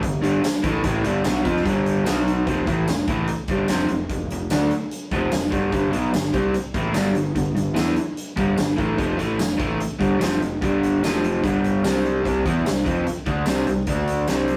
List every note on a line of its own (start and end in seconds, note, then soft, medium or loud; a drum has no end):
0.03 0.22 G1 medium
0.03 0.19 G2 medium
0.03 0.19 D3 medium
0.03 kick medium
0.03 closed hi-hat medium
0.21 0.42 G1 medium
0.21 0.41 G2 medium
0.21 0.43 D3 medium
0.21 0.43 G3 medium
0.21 closed hi-hat medium
0.42 muted overdriven electric guitar stroke medium
0.42 muted fingered electric bass stroke soft
0.42 snare loud
0.42 closed hi-hat medium
0.42 tambourine loud
0.63 0.83 A1 medium
0.63 0.82 A2 medium
0.63 0.83 E3 medium
0.63 0.84 A3 medium
0.63 kick medium
0.63 closed hi-hat medium
0.84 1.03 A1 medium
0.84 1.04 A2 medium
0.84 1.04 E3 medium
0.84 1.04 A3 medium
0.84 kick medium
0.84 closed hi-hat medium
1.04 1.24 G1 medium
1.04 1.24 G2 medium
1.04 1.24 D3 medium
1.04 1.24 G3 medium
1.04 closed hi-hat medium
1.24 1.44 B1 medium
1.24 1.43 B2 medium
1.24 1.44 F#3 medium
1.24 1.44 B3 loud
1.24 snare loud
1.24 closed hi-hat medium
1.24 tambourine loud
1.43 1.64 F2 medium
1.43 1.64 F3 medium
1.43 1.64 C4 medium
1.43 1.64 F4 loud
1.43 kick loud
1.43 closed hi-hat medium
1.56 snare soft
1.63 2.04 G1 medium
1.63 2.05 G2 medium
1.63 2.04 D3 loud
1.63 2.05 G3 loud
1.63 kick medium
1.63 closed hi-hat medium
1.86 closed hi-hat medium
2.04 2.44 B1 medium
2.04 2.45 B2 medium
2.04 2.46 F#3 medium
2.04 2.46 B3 medium
2.04 snare loud
2.04 closed hi-hat medium
2.04 tambourine loud
2.27 closed hi-hat medium
2.46 2.66 F1 medium
2.46 2.66 F2 medium
2.46 2.66 C3 medium
2.46 2.67 F3 medium
2.46 kick medium
2.46 closed hi-hat medium
2.66 2.86 A1 medium
2.66 2.87 A2 medium
2.66 2.87 E3 medium
2.66 2.87 A3 medium
2.66 kick medium
2.66 closed hi-hat medium
2.88 3.07 F1 medium
2.88 3.04 F2 medium
2.88 3.04 C3 medium
2.88 snare medium
2.88 closed hi-hat medium
2.88 tambourine loud
3.08 3.27 A1 medium
3.08 3.28 A2 medium
3.08 3.28 E3 medium
3.08 3.28 A3 medium
3.08 kick loud
3.08 closed hi-hat medium
3.27 muted fingered electric bass stroke soft
3.27 muted overdriven electric guitar stroke medium
3.27 closed hi-hat medium
3.47 3.67 G1 medium
3.47 3.69 G2 medium
3.47 3.69 D3 medium
3.47 3.69 G3 medium
3.47 kick medium
3.47 closed hi-hat soft
3.68 3.88 F1 medium
3.68 3.89 F2 medium
3.68 3.89 C3 medium
3.68 3.89 F3 loud
3.68 snare loud
3.68 closed hi-hat medium
3.68 tambourine loud
3.88 4.08 F1 medium
3.88 4.06 F2 medium
3.88 4.06 C3 medium
3.88 closed hi-hat medium
4.09 4.28 F1 medium
4.09 4.27 F2 soft
4.09 4.27 C3 medium
4.09 kick medium
4.09 closed hi-hat medium
4.30 4.49 F1 medium
4.30 4.47 F2 soft
4.30 4.47 C3 medium
4.30 closed hi-hat medium
4.50 4.70 D2 medium
4.50 4.70 D3 medium
4.50 4.71 A3 loud
4.50 4.71 D4 loud
4.50 snare loud
4.50 closed hi-hat medium
4.50 tambourine loud
4.70 closed hi-hat medium
4.91 closed hi-hat medium
5.12 5.31 F1 medium
5.12 5.31 F2 medium
5.12 5.31 C3 medium
5.12 5.32 F3 medium
5.12 kick medium
5.12 closed hi-hat soft
5.32 5.51 F1 medium
5.32 5.48 F2 medium
5.32 5.48 C3 medium
5.32 snare loud
5.32 closed hi-hat medium
5.32 tambourine loud
5.51 5.71 G1 medium
5.51 5.71 G2 medium
5.51 5.71 D3 medium
5.51 5.72 G3 medium
5.51 kick medium
5.51 closed hi-hat medium
5.72 5.92 G1 medium
5.72 5.92 G2 medium
5.72 5.91 D3 medium
5.72 5.92 G3 medium
5.72 kick medium
5.72 closed hi-hat medium
5.91 6.13 B1 medium
5.91 6.12 B2 medium
5.91 6.12 F#3 medium
5.91 6.13 B3 medium
5.91 closed hi-hat medium
6.12 6.33 G1 medium
6.12 6.29 G2 medium
6.12 6.29 D3 medium
6.12 snare medium
6.12 closed hi-hat medium
6.12 tambourine loud
6.33 6.53 C2 medium
6.33 6.53 C3 medium
6.33 6.54 G3 medium
6.33 6.54 C4 medium
6.33 kick loud
6.33 closed hi-hat medium
6.54 muted overdriven electric guitar stroke medium
6.54 muted fingered electric bass stroke soft
6.54 closed hi-hat medium
6.74 6.93 A1 medium
6.74 6.94 A2 medium
6.74 6.95 E3 medium
6.74 6.95 A3 medium
6.74 kick medium
6.74 closed hi-hat medium
6.94 7.14 G1 medium
6.94 7.14 G2 medium
6.94 7.14 D3 medium
6.94 7.15 G3 medium
6.94 snare loud
6.94 closed hi-hat medium
6.94 tambourine loud
7.15 7.35 G1 medium
7.15 7.31 G2 medium
7.15 7.32 D3 medium
7.15 closed hi-hat medium
7.35 7.55 G1 medium
7.35 7.52 G2 medium
7.35 7.52 D3 medium
7.35 kick medium
7.35 closed hi-hat medium
7.55 7.75 G1 medium
7.55 7.72 G2 medium
7.55 7.72 D3 medium
7.55 closed hi-hat medium
7.74 7.96 E2 medium
7.74 7.95 E3 medium
7.74 7.95 B3 medium
7.74 7.96 E4 medium
7.74 snare loud
7.74 closed hi-hat medium
7.74 tambourine medium
7.96 closed hi-hat medium
8.17 closed hi-hat medium
8.36 8.57 G1 medium
8.36 8.55 G2 medium
8.36 8.55 D3 medium
8.36 8.57 G3 medium
8.36 kick medium
8.36 closed hi-hat soft
8.56 8.77 G1 medium
8.56 8.73 G2 medium
8.56 8.73 D3 medium
8.56 snare loud
8.56 closed hi-hat medium
8.56 tambourine loud
8.77 8.97 A1 medium
8.77 8.97 A2 medium
8.77 8.97 E3 medium
8.77 8.98 A3 medium
8.77 kick medium
8.77 closed hi-hat medium
8.97 9.18 F1 medium
8.97 9.18 F2 medium
8.97 9.16 C3 medium
8.97 9.17 F3 medium
8.97 kick medium
8.97 closed hi-hat medium
9.17 9.38 A1 medium
9.17 9.38 A2 medium
9.17 9.38 E3 medium
9.17 9.38 A3 medium
9.17 closed hi-hat medium
9.38 9.58 F1 medium
9.38 9.55 F2 medium
9.38 9.55 C3 medium
9.38 snare loud
9.38 closed hi-hat medium
9.38 tambourine loud
9.57 9.78 A1 medium
9.57 9.78 A2 medium
9.57 9.79 E3 medium
9.57 9.79 A3 medium
9.57 kick medium
9.57 closed hi-hat medium
9.79 muted overdriven electric guitar stroke medium
9.79 muted fingered electric bass stroke soft
9.79 closed hi-hat medium
9.99 10.20 G1 medium
9.99 10.18 G2 medium
9.99 10.19 D3 medium
9.99 10.20 G3 medium
9.99 kick medium
9.99 closed hi-hat medium
10.19 10.40 F1 medium
10.19 10.39 F2 medium
10.19 10.39 C3 medium
10.19 10.40 F3 medium
10.19 snare loud
10.19 closed hi-hat medium
10.19 tambourine loud
10.40 10.60 F1 medium
10.40 10.57 F2 medium
10.40 10.57 C3 medium
10.40 closed hi-hat medium
10.61 11.00 G1 medium
10.61 11.02 G2 medium
10.61 11.02 D3 medium
10.61 11.02 G3 medium
10.61 kick medium
10.61 closed hi-hat medium
10.83 closed hi-hat medium
11.02 11.40 F1 medium
11.02 11.43 F2 medium
11.02 11.43 C3 loud
11.02 11.43 F3 loud
11.02 snare loud
11.02 closed hi-hat medium
11.02 tambourine loud
11.24 closed hi-hat medium
11.43 11.81 G1 medium
11.43 11.83 G2 medium
11.43 11.83 D3 medium
11.43 11.83 G3 loud
11.43 kick medium
11.43 closed hi-hat medium
11.64 closed hi-hat medium
11.84 12.22 C2 medium
11.84 12.23 C3 medium
11.84 12.24 G3 medium
11.84 12.24 C4 medium
11.84 snare loud
11.84 closed hi-hat medium
11.84 tambourine loud
12.05 closed hi-hat medium
12.24 12.44 C2 medium
12.24 12.44 C3 medium
12.24 12.45 G3 medium
12.24 12.45 C4 medium
12.24 kick medium
12.24 closed hi-hat medium
12.46 12.64 E2 medium
12.46 12.65 E3 medium
12.46 12.65 B3 medium
12.46 12.65 E4 medium
12.46 kick medium
12.46 closed hi-hat medium
12.65 12.84 C2 medium
12.65 12.82 C3 medium
12.65 12.82 G3 medium
12.65 snare loud
12.65 closed hi-hat medium
12.65 tambourine loud
12.85 13.05 F2 medium
12.85 13.05 F3 medium
12.85 13.05 C4 medium
12.85 13.05 F4 medium
12.85 kick loud
12.85 closed hi-hat medium
13.06 muted fingered electric bass stroke soft
13.06 muted overdriven electric guitar stroke medium
13.06 closed hi-hat medium
13.26 13.46 D2 medium
13.26 13.46 D3 medium
13.26 13.46 A3 medium
13.26 13.47 D4 medium
13.26 kick medium
13.26 closed hi-hat soft
13.46 13.66 C2 medium
13.46 13.67 C3 medium
13.46 13.67 G3 medium
13.46 13.67 C4 medium
13.46 snare loud
13.46 closed hi-hat medium
13.46 tambourine loud
13.67 13.86 C2 medium
13.67 13.84 C3 medium
13.67 13.84 G3 medium
13.67 closed hi-hat medium
13.87 14.26 D2 medium
13.87 14.27 D3 medium
13.87 14.28 A3 medium
13.87 14.28 D4 medium
13.87 kick medium
13.87 closed hi-hat medium
14.07 closed hi-hat medium
14.28 14.57 C2 medium
14.28 14.57 C3 medium
14.28 14.57 G3 loud
14.28 14.57 C4 loud
14.28 snare medium
14.28 closed hi-hat medium
14.28 tambourine loud
14.48 closed hi-hat medium